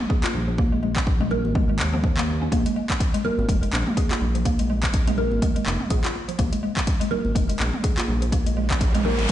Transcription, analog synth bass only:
0, 0, Header, 1, 2, 480
1, 0, Start_track
1, 0, Key_signature, -5, "minor"
1, 0, Tempo, 483871
1, 580, Time_signature, 4, 2, 24, 8
1, 9243, End_track
2, 0, Start_track
2, 0, Title_t, "Analog synth bass"
2, 0, Program_c, 0, 38
2, 340, Note_on_c, 0, 34, 80
2, 1437, Note_on_c, 0, 32, 85
2, 1451, Note_off_c, 0, 34, 0
2, 1779, Note_on_c, 0, 39, 94
2, 1794, Note_off_c, 0, 32, 0
2, 2465, Note_off_c, 0, 39, 0
2, 2499, Note_on_c, 0, 34, 96
2, 2607, Note_off_c, 0, 34, 0
2, 3356, Note_on_c, 0, 32, 84
2, 3438, Note_off_c, 0, 32, 0
2, 3458, Note_on_c, 0, 29, 93
2, 3655, Note_off_c, 0, 29, 0
2, 3699, Note_on_c, 0, 34, 102
2, 3807, Note_off_c, 0, 34, 0
2, 4178, Note_on_c, 0, 34, 79
2, 5275, Note_on_c, 0, 32, 81
2, 5290, Note_off_c, 0, 34, 0
2, 5357, Note_off_c, 0, 32, 0
2, 5617, Note_on_c, 0, 29, 96
2, 5726, Note_off_c, 0, 29, 0
2, 5857, Note_on_c, 0, 34, 91
2, 5966, Note_off_c, 0, 34, 0
2, 6338, Note_on_c, 0, 34, 101
2, 6447, Note_off_c, 0, 34, 0
2, 7194, Note_on_c, 0, 32, 82
2, 7277, Note_off_c, 0, 32, 0
2, 7296, Note_on_c, 0, 29, 92
2, 7494, Note_off_c, 0, 29, 0
2, 7539, Note_on_c, 0, 34, 104
2, 7647, Note_off_c, 0, 34, 0
2, 8017, Note_on_c, 0, 34, 81
2, 9113, Note_on_c, 0, 32, 83
2, 9128, Note_off_c, 0, 34, 0
2, 9196, Note_off_c, 0, 32, 0
2, 9243, End_track
0, 0, End_of_file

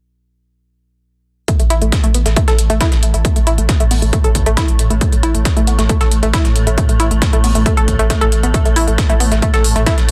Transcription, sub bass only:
0, 0, Header, 1, 2, 480
1, 0, Start_track
1, 0, Tempo, 441176
1, 1614, Time_signature, 4, 2, 24, 8
1, 11001, End_track
2, 0, Start_track
2, 0, Title_t, "Sub bass"
2, 0, Program_c, 0, 38
2, 1736, Note_on_c, 0, 33, 80
2, 1846, Note_off_c, 0, 33, 0
2, 1853, Note_on_c, 0, 33, 98
2, 1970, Note_off_c, 0, 33, 0
2, 1976, Note_on_c, 0, 33, 82
2, 2091, Note_off_c, 0, 33, 0
2, 2216, Note_on_c, 0, 33, 79
2, 2327, Note_off_c, 0, 33, 0
2, 2333, Note_on_c, 0, 33, 96
2, 2449, Note_off_c, 0, 33, 0
2, 2456, Note_on_c, 0, 33, 80
2, 2571, Note_off_c, 0, 33, 0
2, 2696, Note_on_c, 0, 33, 79
2, 2807, Note_off_c, 0, 33, 0
2, 2813, Note_on_c, 0, 33, 99
2, 2930, Note_off_c, 0, 33, 0
2, 2936, Note_on_c, 0, 33, 77
2, 3051, Note_off_c, 0, 33, 0
2, 3176, Note_on_c, 0, 33, 74
2, 3287, Note_off_c, 0, 33, 0
2, 3293, Note_on_c, 0, 33, 103
2, 3410, Note_off_c, 0, 33, 0
2, 3416, Note_on_c, 0, 33, 81
2, 3531, Note_off_c, 0, 33, 0
2, 3656, Note_on_c, 0, 33, 77
2, 3767, Note_off_c, 0, 33, 0
2, 3773, Note_on_c, 0, 33, 100
2, 3889, Note_off_c, 0, 33, 0
2, 3896, Note_on_c, 0, 33, 81
2, 4011, Note_off_c, 0, 33, 0
2, 4136, Note_on_c, 0, 33, 76
2, 4247, Note_off_c, 0, 33, 0
2, 4254, Note_on_c, 0, 33, 93
2, 4370, Note_off_c, 0, 33, 0
2, 4376, Note_on_c, 0, 33, 84
2, 4491, Note_off_c, 0, 33, 0
2, 4616, Note_on_c, 0, 33, 79
2, 4726, Note_off_c, 0, 33, 0
2, 4733, Note_on_c, 0, 33, 104
2, 4849, Note_off_c, 0, 33, 0
2, 4856, Note_on_c, 0, 33, 83
2, 4971, Note_off_c, 0, 33, 0
2, 5096, Note_on_c, 0, 33, 76
2, 5207, Note_off_c, 0, 33, 0
2, 5214, Note_on_c, 0, 33, 97
2, 5330, Note_off_c, 0, 33, 0
2, 5336, Note_on_c, 0, 33, 82
2, 5451, Note_off_c, 0, 33, 0
2, 5577, Note_on_c, 0, 33, 77
2, 5687, Note_off_c, 0, 33, 0
2, 5693, Note_on_c, 0, 33, 103
2, 5810, Note_off_c, 0, 33, 0
2, 5816, Note_on_c, 0, 33, 81
2, 5931, Note_off_c, 0, 33, 0
2, 6056, Note_on_c, 0, 33, 76
2, 6167, Note_off_c, 0, 33, 0
2, 6173, Note_on_c, 0, 33, 96
2, 6290, Note_off_c, 0, 33, 0
2, 6296, Note_on_c, 0, 33, 84
2, 6411, Note_off_c, 0, 33, 0
2, 6536, Note_on_c, 0, 33, 85
2, 6646, Note_off_c, 0, 33, 0
2, 6653, Note_on_c, 0, 33, 106
2, 6770, Note_off_c, 0, 33, 0
2, 6776, Note_on_c, 0, 33, 79
2, 6891, Note_off_c, 0, 33, 0
2, 7016, Note_on_c, 0, 33, 74
2, 7127, Note_off_c, 0, 33, 0
2, 7133, Note_on_c, 0, 33, 103
2, 7250, Note_off_c, 0, 33, 0
2, 7256, Note_on_c, 0, 33, 80
2, 7371, Note_off_c, 0, 33, 0
2, 7496, Note_on_c, 0, 33, 78
2, 7606, Note_off_c, 0, 33, 0
2, 7613, Note_on_c, 0, 33, 99
2, 7730, Note_off_c, 0, 33, 0
2, 7736, Note_on_c, 0, 33, 81
2, 7851, Note_off_c, 0, 33, 0
2, 7976, Note_on_c, 0, 33, 79
2, 8087, Note_off_c, 0, 33, 0
2, 8093, Note_on_c, 0, 33, 95
2, 8209, Note_off_c, 0, 33, 0
2, 8216, Note_on_c, 0, 33, 84
2, 8331, Note_off_c, 0, 33, 0
2, 8456, Note_on_c, 0, 33, 82
2, 8566, Note_off_c, 0, 33, 0
2, 8573, Note_on_c, 0, 33, 105
2, 8689, Note_off_c, 0, 33, 0
2, 8696, Note_on_c, 0, 33, 81
2, 8811, Note_off_c, 0, 33, 0
2, 8936, Note_on_c, 0, 33, 74
2, 9046, Note_off_c, 0, 33, 0
2, 9053, Note_on_c, 0, 33, 100
2, 9170, Note_off_c, 0, 33, 0
2, 9176, Note_on_c, 0, 33, 78
2, 9291, Note_off_c, 0, 33, 0
2, 9416, Note_on_c, 0, 33, 81
2, 9527, Note_off_c, 0, 33, 0
2, 9533, Note_on_c, 0, 33, 101
2, 9650, Note_off_c, 0, 33, 0
2, 9656, Note_on_c, 0, 33, 79
2, 9771, Note_off_c, 0, 33, 0
2, 9896, Note_on_c, 0, 33, 79
2, 10007, Note_off_c, 0, 33, 0
2, 10013, Note_on_c, 0, 33, 94
2, 10129, Note_off_c, 0, 33, 0
2, 10136, Note_on_c, 0, 33, 83
2, 10251, Note_off_c, 0, 33, 0
2, 10376, Note_on_c, 0, 33, 77
2, 10487, Note_off_c, 0, 33, 0
2, 10493, Note_on_c, 0, 33, 102
2, 10609, Note_off_c, 0, 33, 0
2, 10616, Note_on_c, 0, 33, 83
2, 10731, Note_off_c, 0, 33, 0
2, 10856, Note_on_c, 0, 33, 77
2, 10967, Note_off_c, 0, 33, 0
2, 11001, End_track
0, 0, End_of_file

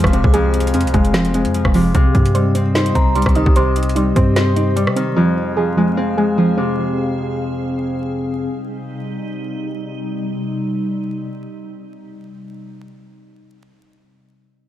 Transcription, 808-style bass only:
0, 0, Header, 1, 2, 480
1, 0, Start_track
1, 0, Key_signature, -3, "minor"
1, 0, Tempo, 402685
1, 401, Time_signature, 4, 2, 24, 8
1, 17505, End_track
2, 0, Start_track
2, 0, Title_t, "808-style bass"
2, 0, Program_c, 0, 38
2, 47, Note_on_c, 0, 29, 101
2, 278, Note_off_c, 0, 29, 0
2, 287, Note_on_c, 0, 36, 105
2, 880, Note_on_c, 0, 41, 103
2, 898, Note_off_c, 0, 36, 0
2, 1007, Note_on_c, 0, 36, 102
2, 1024, Note_off_c, 0, 41, 0
2, 1114, Note_off_c, 0, 36, 0
2, 1120, Note_on_c, 0, 29, 105
2, 1727, Note_on_c, 0, 41, 100
2, 1745, Note_off_c, 0, 29, 0
2, 1955, Note_off_c, 0, 41, 0
2, 1967, Note_on_c, 0, 29, 102
2, 2306, Note_off_c, 0, 29, 0
2, 2320, Note_on_c, 0, 36, 113
2, 2551, Note_off_c, 0, 36, 0
2, 2559, Note_on_c, 0, 43, 105
2, 3481, Note_off_c, 0, 43, 0
2, 3520, Note_on_c, 0, 36, 107
2, 3873, Note_off_c, 0, 36, 0
2, 3887, Note_on_c, 0, 36, 97
2, 4118, Note_off_c, 0, 36, 0
2, 4128, Note_on_c, 0, 36, 104
2, 4927, Note_off_c, 0, 36, 0
2, 4960, Note_on_c, 0, 43, 108
2, 5807, Note_on_c, 0, 48, 98
2, 5825, Note_off_c, 0, 43, 0
2, 6142, Note_off_c, 0, 48, 0
2, 17505, End_track
0, 0, End_of_file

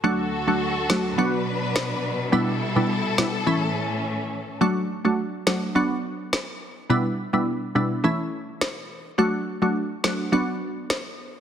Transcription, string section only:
0, 0, Header, 1, 2, 480
1, 0, Start_track
1, 0, Tempo, 571429
1, 34, Time_signature, 4, 2, 24, 8
1, 9577, End_track
2, 0, Start_track
2, 0, Title_t, "String section"
2, 0, Program_c, 0, 48
2, 32, Note_on_c, 0, 66, 68
2, 33, Note_on_c, 0, 38, 71
2, 33, Note_on_c, 0, 50, 66
2, 33, Note_on_c, 0, 69, 80
2, 984, Note_off_c, 0, 38, 0
2, 984, Note_off_c, 0, 50, 0
2, 984, Note_off_c, 0, 66, 0
2, 984, Note_off_c, 0, 69, 0
2, 994, Note_on_c, 0, 54, 68
2, 994, Note_on_c, 0, 62, 70
2, 994, Note_on_c, 0, 71, 81
2, 995, Note_on_c, 0, 47, 77
2, 1944, Note_off_c, 0, 54, 0
2, 1944, Note_off_c, 0, 62, 0
2, 1944, Note_off_c, 0, 71, 0
2, 1955, Note_on_c, 0, 55, 69
2, 1955, Note_on_c, 0, 64, 68
2, 1955, Note_on_c, 0, 69, 86
2, 2895, Note_off_c, 0, 47, 0
2, 2905, Note_off_c, 0, 55, 0
2, 2905, Note_off_c, 0, 64, 0
2, 2913, Note_on_c, 0, 45, 73
2, 2913, Note_on_c, 0, 61, 70
2, 2914, Note_on_c, 0, 52, 71
2, 3855, Note_off_c, 0, 69, 0
2, 3864, Note_off_c, 0, 45, 0
2, 3864, Note_off_c, 0, 52, 0
2, 3864, Note_off_c, 0, 61, 0
2, 9577, End_track
0, 0, End_of_file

